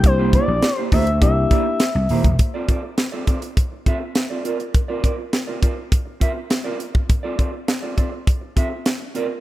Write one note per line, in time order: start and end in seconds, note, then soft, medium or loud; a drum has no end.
0.00 0.37 C2 loud
0.00 0.68 A#3 medium
0.00 0.69 D4 medium
0.00 0.69 E4 medium
0.00 0.69 G4 medium
0.00 muted clean electric guitar stroke soft
0.00 kick loud
0.00 closed hi-hat medium
0.06 0.32 C5 loud
0.18 0.33 A#3 medium
0.18 0.33 E4 medium
0.18 0.34 G4 medium
0.18 0.33 C5 medium
0.33 0.45 A#3 medium
0.33 0.45 E4 medium
0.33 0.46 G4 medium
0.33 0.46 C5 medium
0.33 0.77 D5 loud
0.33 kick medium
0.33 closed hi-hat medium
0.48 0.59 A#1 loud
0.48 muted clean electric guitar stroke medium
0.62 muted clean electric guitar stroke soft
0.62 snare loud
0.62 closed hi-hat medium
0.77 0.91 A#3 medium
0.77 0.92 E4 medium
0.77 0.92 G4 medium
0.77 0.89 C5 loud
0.77 0.92 C5 medium
0.92 1.23 D2 medium
0.92 1.04 A#3 medium
0.92 1.04 E4 medium
0.92 1.04 G4 medium
0.92 1.05 C5 medium
0.92 1.20 E5 medium
0.92 kick medium
0.92 open hi-hat medium
1.07 muted clean electric guitar stroke medium
1.07 closed hi-hat medium
1.21 1.43 C2 loud
1.21 1.80 A#3 medium
1.21 1.80 D4 medium
1.21 1.80 E4 medium
1.21 1.80 G4 medium
1.21 2.36 E5 loud
1.21 muted clean electric guitar stroke soft
1.21 kick loud
1.21 closed hi-hat medium
1.37 muted clean electric guitar stroke medium
1.51 1.66 A#3 medium
1.51 1.66 E4 medium
1.51 1.66 G4 medium
1.51 1.66 D5 medium
1.51 kick loud
1.51 closed hi-hat medium
1.66 muted clean electric guitar stroke soft
1.80 snare loud
1.80 closed hi-hat loud
1.95 2.06 C2 loud
1.95 muted clean electric guitar stroke soft
2.09 2.21 D#1 loud
2.09 2.25 A#3 medium
2.09 2.25 E4 medium
2.09 2.25 G4 medium
2.09 2.24 C5 medium
2.09 open hi-hat medium
2.24 2.35 E1 medium
2.24 muted clean electric guitar stroke soft
2.24 kick medium
2.24 closed hi-hat soft
2.39 muted clean electric guitar stroke soft
2.39 kick loud
2.39 closed hi-hat medium
2.54 2.67 C4 medium
2.54 2.68 F4 medium
2.54 2.69 A4 medium
2.54 2.69 D5 medium
2.69 2.80 C4 medium
2.69 2.81 F4 medium
2.69 2.81 A4 medium
2.69 2.81 D5 medium
2.69 kick medium
2.69 closed hi-hat medium
2.83 muted clean electric guitar stroke medium
2.98 muted clean electric guitar stroke soft
2.98 snare loud
2.98 closed hi-hat medium
3.12 3.26 C4 medium
3.12 3.26 F4 medium
3.12 3.27 A4 medium
3.12 3.27 D5 medium
3.27 3.39 C4 medium
3.27 3.39 F4 medium
3.27 3.39 A4 medium
3.27 3.40 D5 medium
3.27 kick medium
3.27 closed hi-hat medium
3.42 muted clean electric guitar stroke soft
3.42 closed hi-hat medium
3.57 muted clean electric guitar stroke soft
3.57 kick loud
3.57 closed hi-hat medium
3.72 muted clean electric guitar stroke soft
3.86 4.01 C4 medium
3.86 4.01 F4 medium
3.86 4.00 A4 medium
3.86 4.00 E5 medium
3.86 kick medium
3.86 closed hi-hat medium
4.01 muted clean electric guitar stroke soft
4.15 muted clean electric guitar stroke soft
4.15 snare loud
4.15 closed hi-hat medium
4.30 4.44 C4 medium
4.30 4.44 F4 medium
4.30 4.46 A4 medium
4.30 4.45 D5 medium
4.45 4.57 C4 medium
4.45 4.57 F4 medium
4.45 4.57 A#4 medium
4.45 4.58 D5 medium
4.45 closed hi-hat medium
4.60 muted clean electric guitar stroke soft
4.60 closed hi-hat soft
4.74 muted clean electric guitar stroke soft
4.74 kick loud
4.74 closed hi-hat medium
4.88 5.02 C4 medium
4.88 5.03 F4 medium
4.88 5.04 A#4 medium
4.88 5.04 D5 medium
5.03 5.15 C4 medium
5.03 5.16 F4 medium
5.03 5.16 A#4 medium
5.03 5.16 D5 medium
5.03 kick medium
5.03 closed hi-hat medium
5.19 muted clean electric guitar stroke soft
5.33 muted clean electric guitar stroke soft
5.33 snare medium
5.33 closed hi-hat medium
5.47 5.60 C4 medium
5.47 5.61 F4 medium
5.47 5.62 A#4 medium
5.47 5.62 D5 medium
5.62 5.74 C4 medium
5.62 5.74 F4 medium
5.62 5.74 A#4 medium
5.62 5.75 D5 medium
5.62 kick medium
5.62 closed hi-hat medium
5.77 muted clean electric guitar stroke soft
5.91 muted clean electric guitar stroke soft
5.91 kick loud
5.91 closed hi-hat medium
6.06 muted clean electric guitar stroke soft
6.20 6.36 C4 medium
6.20 6.35 F4 medium
6.20 6.35 A#4 medium
6.20 6.34 E5 medium
6.20 kick medium
6.20 closed hi-hat medium
6.35 muted clean electric guitar stroke soft
6.50 muted clean electric guitar stroke soft
6.50 snare loud
6.50 closed hi-hat medium
6.64 6.79 C4 medium
6.64 6.79 F4 medium
6.64 6.79 A#4 medium
6.64 6.80 D5 medium
6.80 muted clean electric guitar stroke soft
6.80 closed hi-hat medium
6.94 muted clean electric guitar stroke soft
6.94 kick medium
7.09 muted clean electric guitar stroke soft
7.09 kick loud
7.09 closed hi-hat medium
7.23 7.37 C4 medium
7.23 7.38 F4 medium
7.23 7.38 A4 medium
7.23 7.39 D5 medium
7.38 7.50 C4 medium
7.38 7.51 F4 medium
7.38 7.51 A4 medium
7.38 7.51 D5 medium
7.38 kick medium
7.38 closed hi-hat medium
7.53 muted clean electric guitar stroke soft
7.68 muted clean electric guitar stroke soft
7.68 snare loud
7.68 closed hi-hat medium
7.82 7.96 C4 medium
7.82 7.97 F4 medium
7.82 7.97 A4 medium
7.82 7.98 D5 medium
7.97 8.09 C4 medium
7.97 8.10 F4 medium
7.97 8.10 A4 medium
7.97 8.10 D5 medium
7.97 kick medium
7.97 closed hi-hat medium
8.12 muted clean electric guitar stroke soft
8.27 muted clean electric guitar stroke soft
8.27 kick loud
8.27 closed hi-hat medium
8.41 muted clean electric guitar stroke soft
8.56 8.71 C4 medium
8.56 8.71 F4 medium
8.56 8.70 A4 medium
8.56 8.70 E5 medium
8.56 kick medium
8.56 closed hi-hat medium
8.71 muted clean electric guitar stroke soft
8.86 snare loud
8.86 closed hi-hat medium
9.00 muted clean electric guitar stroke medium
9.14 9.30 C4 medium
9.14 9.29 F4 medium
9.14 9.29 A#4 medium
9.14 9.28 D5 medium
9.14 closed hi-hat medium
9.29 muted clean electric guitar stroke medium